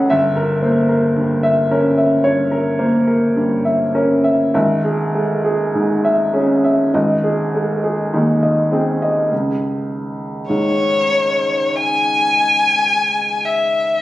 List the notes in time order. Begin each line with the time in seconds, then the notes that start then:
Already playing: C#2 A3 C#4 A4 B4 F#5
0.10 G1 E5
0.36 A#4
0.62 A#3 C5
0.89 A#4
1.16 G2
1.43 E5
1.71 C#4 A#4
1.97 E5
2.24 G2 C#5
2.52 A#4
2.79 A#3 C5
3.08 A#4
3.36 G2
3.65 E5
3.95 C#4 A#4
4.24 E5
4.54 G#1 E5
4.85 G#4
5.15 G#3 A4
5.44 G#4
5.75 G#2
6.05 E5
6.34 C#4 G#4
6.64 E5
6.94 G#1 D#5
7.24 G#4
7.54 G#3 A4
7.84 G#4
8.14 D#2 D#4
8.43 D#5
8.72 C4 G#4
9.02 D#5
9.31 C#2
10.49 G#2 C#5
11.75 G#5
13.45 E5